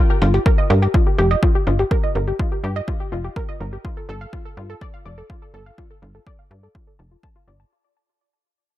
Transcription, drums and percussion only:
0.22 closed hi-hat
0.34 closed hi-hat
0.46 kick, closed hi-hat
0.70 closed hi-hat
0.82 closed hi-hat
0.94 kick, closed hi-hat
1.18 closed hi-hat
1.31 closed hi-hat
1.43 kick, closed hi-hat
1.67 closed hi-hat
1.79 closed hi-hat
1.91 kick, closed hi-hat
2.15 closed hi-hat
2.28 closed hi-hat
2.39 kick, closed hi-hat
2.64 closed hi-hat
2.76 closed hi-hat
2.88 kick
3.12 closed hi-hat
3.24 closed hi-hat
3.36 kick
3.60 closed hi-hat
3.73 closed hi-hat
3.85 kick
4.09 closed hi-hat
4.21 closed hi-hat
4.33 kick
4.57 closed hi-hat
4.70 closed hi-hat
4.81 kick
5.06 closed hi-hat
5.18 closed hi-hat
5.30 kick
5.66 closed hi-hat
5.78 kick
6.02 closed hi-hat
6.15 closed hi-hat
6.27 kick
6.63 closed hi-hat
6.75 kick
7.23 kick
7.60 closed hi-hat

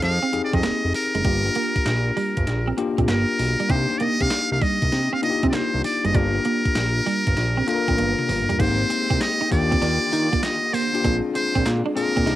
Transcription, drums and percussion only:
0.02 snare, closed hi-hat
0.33 closed hi-hat
0.53 kick, closed hi-hat
0.63 snare, clap, closed hi-hat
0.95 open hi-hat
1.15 closed hi-hat
1.25 kick, closed hi-hat
1.55 closed hi-hat
1.76 kick, closed hi-hat
1.86 snare, clap, closed hi-hat
2.17 open hi-hat
2.37 kick, closed hi-hat
2.47 snare, closed hi-hat
2.78 closed hi-hat
2.98 kick, closed hi-hat
3.08 snare, clap, closed hi-hat
3.39 open hi-hat
3.60 closed hi-hat
3.70 kick, closed hi-hat
4.00 closed hi-hat
4.21 kick, closed hi-hat
4.30 snare, clap, closed hi-hat
4.62 kick, open hi-hat
4.82 kick, closed hi-hat
4.92 snare, closed hi-hat
5.23 closed hi-hat
5.43 kick, closed hi-hat
5.53 snare, clap, closed hi-hat
5.84 open hi-hat
6.05 closed hi-hat
6.15 kick, closed hi-hat
6.45 closed hi-hat
6.66 kick, closed hi-hat
6.75 snare, clap, closed hi-hat
7.07 open hi-hat
7.27 kick, closed hi-hat
7.37 snare, closed hi-hat
7.68 closed hi-hat
7.88 kick, closed hi-hat
7.98 closed hi-hat, high tom
8.19 mid tom
8.29 mid tom, open hi-hat
8.50 closed hi-hat, floor tom
8.60 kick, closed hi-hat, crash, tambourine
8.90 closed hi-hat, tambourine
9.11 kick, closed hi-hat
9.21 snare, clap, closed hi-hat, tambourine
9.51 kick, open hi-hat, tambourine
9.72 kick, closed hi-hat
9.82 snare, closed hi-hat
10.13 closed hi-hat, tambourine
10.33 kick, closed hi-hat
10.43 snare, clap, closed hi-hat, tambourine
10.74 open hi-hat, tambourine
10.95 closed hi-hat
11.05 kick, closed hi-hat, tambourine
11.35 closed hi-hat, tambourine
11.56 kick, closed hi-hat
11.66 snare, clap, closed hi-hat, tambourine
11.97 open hi-hat, tambourine
12.17 kick, closed hi-hat
12.27 snare, closed hi-hat

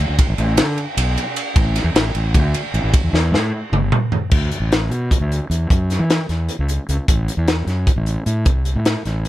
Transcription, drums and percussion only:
0.19 kick, ride
0.38 ride
0.57 snare, ride
0.78 ride
0.97 ride
1.17 ride
1.36 ride
1.56 kick, ride
1.76 snare, ride
1.95 snare, ride
2.15 ride
2.34 kick, ride
2.54 ride
2.74 ride
2.94 kick, ride
3.14 snare
3.34 snare
3.73 mid tom
3.92 mid tom
4.12 floor tom
4.31 kick, crash
4.52 closed hi-hat
4.72 snare, closed hi-hat
4.91 closed hi-hat
5.11 kick, closed hi-hat
5.32 closed hi-hat
5.51 closed hi-hat
5.70 kick, closed hi-hat
5.90 snare, closed hi-hat
6.10 snare, closed hi-hat
6.29 snare, closed hi-hat
6.49 closed hi-hat
6.69 closed hi-hat
6.89 closed hi-hat
7.08 kick, closed hi-hat
7.28 closed hi-hat
7.48 snare, closed hi-hat
7.67 snare, closed hi-hat
7.87 kick, closed hi-hat
8.06 closed hi-hat
8.26 closed hi-hat
8.46 kick, closed hi-hat
8.65 closed hi-hat
8.85 snare, closed hi-hat
9.05 snare, closed hi-hat
9.25 closed hi-hat

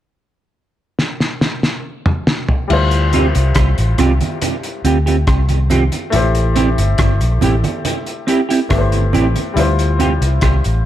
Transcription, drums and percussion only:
0.99 snare
1.20 snare
1.41 snare
1.63 snare
2.06 mid tom
2.27 snare
2.49 floor tom
2.70 crash, low conga
2.91 closed hi-hat
3.13 closed hi-hat, low conga
3.35 closed hi-hat
3.55 kick, cross-stick, closed hi-hat, high conga
3.78 closed hi-hat
3.98 cross-stick, closed hi-hat, high conga, low conga
4.21 closed hi-hat, high conga
4.42 closed hi-hat, low conga
4.63 closed hi-hat
4.85 closed hi-hat
5.07 closed hi-hat
5.27 kick, cross-stick, closed hi-hat
5.49 closed hi-hat, high conga
5.70 closed hi-hat, high conga, low conga
5.92 closed hi-hat, high conga
6.12 closed hi-hat, low conga
6.35 closed hi-hat
6.56 closed hi-hat, low conga
6.78 closed hi-hat
6.98 kick, cross-stick, closed hi-hat, high conga
7.21 closed hi-hat
7.41 closed hi-hat, high conga, low conga
7.64 closed hi-hat, high conga
7.85 closed hi-hat, low conga
8.06 closed hi-hat
8.28 closed hi-hat
8.50 closed hi-hat
8.70 kick, cross-stick, closed hi-hat
8.92 closed hi-hat, high conga
9.13 closed hi-hat, high conga, low conga
9.36 closed hi-hat, high conga
9.57 closed hi-hat, low conga
9.79 closed hi-hat
10.00 closed hi-hat, low conga
10.22 closed hi-hat
10.41 kick, cross-stick, closed hi-hat, high conga
10.64 closed hi-hat

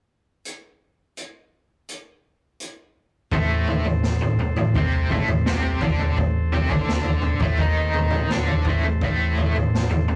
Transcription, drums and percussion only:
0.45 closed hi-hat
1.17 closed hi-hat
1.89 closed hi-hat
2.60 closed hi-hat
3.31 kick, floor tom
3.67 floor tom
3.85 floor tom
4.03 snare
4.20 floor tom
4.39 mid tom
4.56 floor tom
4.74 kick, floor tom
5.10 kick, floor tom, mid tom
5.28 floor tom
5.46 snare
5.81 kick, floor tom
5.99 mid tom
6.17 kick, floor tom
6.52 floor tom
6.70 kick, floor tom
6.89 snare
7.04 floor tom
7.22 mid tom
7.40 kick, floor tom
7.57 kick, floor tom
7.94 floor tom, mid tom
8.11 floor tom, mid tom
8.30 snare
8.47 floor tom
8.65 kick, floor tom
8.83 mid tom
9.01 kick, floor tom
9.38 floor tom
9.56 floor tom
9.75 snare
9.91 floor tom
10.08 mid tom

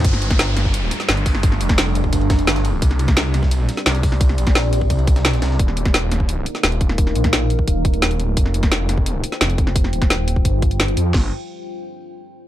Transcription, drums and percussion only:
0.00 snare, ride
0.05 kick, closed hi-hat, ride
0.13 snare, ride
0.22 closed hi-hat, ride
0.31 kick, snare, closed hi-hat
0.39 snare, closed hi-hat, ride
0.57 snare, closed hi-hat, ride
0.65 kick, snare
0.74 closed hi-hat, ride
0.91 snare, closed hi-hat, ride
1.00 snare, closed hi-hat
1.09 snare, closed hi-hat, ride
1.17 closed hi-hat
1.26 kick, closed hi-hat, open hi-hat
1.35 snare
1.43 kick, closed hi-hat, ride
1.52 snare
1.61 closed hi-hat, ride
1.69 kick, snare, closed hi-hat
1.78 snare, closed hi-hat, ride
1.95 closed hi-hat, ride
2.04 kick
2.13 kick, closed hi-hat, ride
2.21 ride
2.30 kick, snare, closed hi-hat, ride
2.39 closed hi-hat
2.47 snare, closed hi-hat, ride
2.56 snare, closed hi-hat
2.65 closed hi-hat, ride
2.82 kick, closed hi-hat, ride
2.91 snare, ride
2.99 closed hi-hat, ride
3.08 kick, snare, closed hi-hat
3.17 snare, closed hi-hat, ride
3.34 snare, closed hi-hat, ride
3.43 kick, snare
3.51 closed hi-hat, ride
3.69 snare, closed hi-hat, ride
3.77 snare, closed hi-hat
3.86 snare, closed hi-hat, ride
3.95 closed hi-hat
4.03 kick, closed hi-hat, open hi-hat
4.12 snare
4.21 kick, closed hi-hat, ride
4.29 snare
4.38 closed hi-hat, ride
4.47 kick, snare, closed hi-hat
4.55 snare, closed hi-hat, ride
4.73 closed hi-hat, ride
4.81 kick
4.90 kick, closed hi-hat, ride
4.99 ride
5.07 kick, closed hi-hat, ride
5.16 snare, closed hi-hat
5.25 snare, closed hi-hat, ride
5.33 snare, closed hi-hat
5.42 snare, closed hi-hat, ride
5.51 snare
5.59 kick, closed hi-hat
5.68 snare
5.77 closed hi-hat
5.85 kick, snare, closed hi-hat
5.94 snare, closed hi-hat
6.12 snare, closed hi-hat
6.20 kick
6.29 closed hi-hat
6.46 closed hi-hat
6.55 snare, closed hi-hat
6.63 snare, closed hi-hat
6.72 closed hi-hat
6.81 kick, closed hi-hat
6.89 snare
6.98 kick, closed hi-hat
7.07 snare
7.16 closed hi-hat
7.24 kick, snare, closed hi-hat
7.33 snare, closed hi-hat
7.50 closed hi-hat
7.59 kick
7.68 kick, closed hi-hat
7.85 kick, closed hi-hat
7.94 closed hi-hat
8.02 snare, closed hi-hat
8.11 closed hi-hat
8.20 closed hi-hat
8.37 kick, closed hi-hat
8.46 snare
8.54 closed hi-hat
8.63 kick, snare, closed hi-hat
8.72 snare, closed hi-hat
8.89 snare, closed hi-hat
8.98 kick
9.06 closed hi-hat
9.24 closed hi-hat
9.32 snare, closed hi-hat
9.41 snare, closed hi-hat
9.50 closed hi-hat
9.58 kick, closed hi-hat
9.67 snare
9.76 kick, closed hi-hat
9.84 snare
9.93 closed hi-hat
10.02 kick, snare, closed hi-hat
10.10 snare, closed hi-hat
10.28 closed hi-hat
10.36 kick
10.45 kick, closed hi-hat
10.62 kick, closed hi-hat
10.71 closed hi-hat
10.80 snare, closed hi-hat
10.88 closed hi-hat
10.97 closed hi-hat
11.14 kick, snare, crash

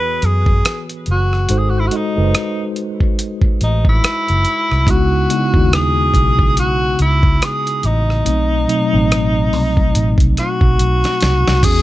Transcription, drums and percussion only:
0.22 closed hi-hat
0.46 kick
0.65 cross-stick, closed hi-hat
0.90 closed hi-hat
1.06 closed hi-hat
1.33 cross-stick
1.49 closed hi-hat
1.91 closed hi-hat
2.35 cross-stick, closed hi-hat
2.76 closed hi-hat
3.00 kick
3.19 closed hi-hat
3.41 kick
3.61 closed hi-hat
3.85 kick
4.04 cross-stick, closed hi-hat
4.28 closed hi-hat
4.45 closed hi-hat
4.72 cross-stick
4.87 kick, closed hi-hat
5.30 closed hi-hat
5.54 kick
5.73 cross-stick, closed hi-hat
6.14 kick, closed hi-hat
6.39 kick
6.57 closed hi-hat
6.99 closed hi-hat
7.23 kick
7.42 cross-stick, closed hi-hat
7.67 closed hi-hat
7.83 closed hi-hat
8.10 cross-stick
8.26 closed hi-hat
8.69 closed hi-hat
9.12 cross-stick, closed hi-hat
9.53 open hi-hat
9.77 kick
9.95 closed hi-hat
10.18 kick, closed hi-hat
10.37 cross-stick, closed hi-hat
10.61 kick
10.79 closed hi-hat
11.04 snare, closed hi-hat
11.21 snare, closed hi-hat
11.48 snare
11.63 kick, closed hi-hat, crash

